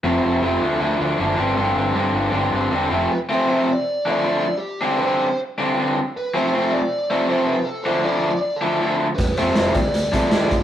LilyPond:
<<
  \new Staff \with { instrumentName = "Lead electric guitar" } { \time 4/4 \key d \dorian \tempo 4 = 158 r1 | r1 | b'8 c''4 d''4 d''4~ d''16 g'16~ | g'8. b'16 c''4 r2 |
b'8 c''4 d''4 d''8 c''8 b'8 | a'8 c''8 d''4 d''8 a'4 r8 | b'8 c''4 d''4 d''4~ d''16 r16 | }
  \new Staff \with { instrumentName = "Overdriven electric guitar" } { \clef bass \time 4/4 \key d \dorian <f, c f a c'>8 <f a c'>8 <f, c f a c'>8 <d f a d'>8 <d f a d'>8 <f a d'>8 <d f a d'>8 <g, d g c' d'>8 | <g, d g c' d'>8 <g c' d'>8 <g, d g c' d'>8 <g c' d'>8 <g, d g c' d'>8 <g c' d'>8 <d g c' d'>8 <f, c f a c'>8 | r8 <c f a c'>8 <c f a c'>8 r4 <d f a d'>8 <d f a d'>8 r8 | r8 <d g c' d'>8 <d g c' d'>8 r4 <d g c' d'>8 <d g c' d'>8 r8 |
r8 <c f a c'>8 <c f a c'>8 r4 <c f a c'>8 <c f a c'>8 r8 | r8 <d f a d'>8 <d f a d'>8 r4 <d f a d'>8 <d f a d'>8 r8 | r8 <c f a c'>8 <c f a c'>8 r4 <d f a d'>8 <d f a d'>8 r8 | }
  \new Staff \with { instrumentName = "Picked electric bass" } { \clef bass \time 4/4 \key d \dorian f,,8 f,,8 f,,8 d,8 d,8 d,8 fis,,8 g,,8 | g,,8 g,,8 g,8 g,,8 g,,8 g,,8 e,,8 f,,8 | r1 | r1 |
r1 | r1 | f,,8 f,,8 f,,8 d,8 d,8 c8 d,8 g,,8 | }
  \new DrumStaff \with { instrumentName = "Drums" } \drummode { \time 4/4 r4 r4 r4 r4 | r4 r4 r4 r4 | r4 r4 r4 r4 | r4 r4 r4 r4 |
r4 r4 r4 r4 | r4 r4 r4 r4 | <hh bd>8 hh16 sn16 <hh sn>8 <hh bd>8 hh8 <hh bd>8 <hh sn>8 <hh bd>8 | }
>>